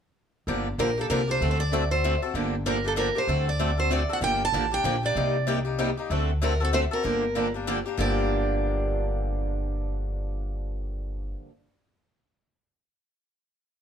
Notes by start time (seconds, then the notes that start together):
0.47 G1 D3 F3 A#3 D4 G4
0.78 A#1 D3 F3 A#3 D4 G4 A#4
0.98 A#3 D4 G4 A4
1.10 C2 D3 F3 A#3 D4 G4 A#4
1.28 A#3 D4 G4 C5
1.41 D2 D3 A3 C4 F#4 A4
1.51 C5
1.60 D5
1.73 D3 A3 C4 F#4 A4
1.91 C4 F#4 A4 C5
2.04 D3 A3 C4 F#4 A4
2.22 C4 F#4 A4
2.34 G1 D3 F3 A#3 D4 G4
2.66 D3 F3 A#3 D4 G4 A#4
2.84 A#3 D4 G4 A4
2.96 D3 F3 A#3 D4 G4 A#4
3.15 A#3 D4 G4 C5
3.27 D2 D3 A3 C4 F#4 A4
3.49 D5
3.59 D3 A3 C4 F#4 A4
3.78 C4 F#4 A4 C5
3.90 D3 A3 C4 F#4 A4 D5
4.09 C4 F#4 A4
4.13 F#5
4.21 G1 D3 F3 A#3 D4 G4 G5
4.45 A5
4.52 A1 D3 F3 A#3 D4 G4
4.71 A#3 D4 G4 G5
4.84 A#1 D3 F3 A#3 D4 G4
5.03 A#3 D4 G4 D5
5.16 C2 C3 G3 A#3 D#4 G4
5.47 C3 G3 A#3 D#4 G4
5.65 A#3 D#4 G4
5.78 C3 G3 A#3 D#4 G4
5.97 A#3 D#4 G4
6.10 D2 D3 A3 C4 F#4 A4
6.42 D3 A3 C4 F#4 A4 A#4
6.60 C4 F#4 A4
6.65 A4
6.73 D3 A3 C4 F#4 A4 C5
6.91 C4 F#4 A4 A#4
7.03 G1 D3 F3 A#3 D4 G4
7.35 D3 F3 A#3 D4 G4
7.54 A#3 D4 G4
7.67 D3 F3 A#3 D4 G4
7.86 A#3 D4 G4
7.97 G1 G2 D3 F3 A#3 D4 G4 D5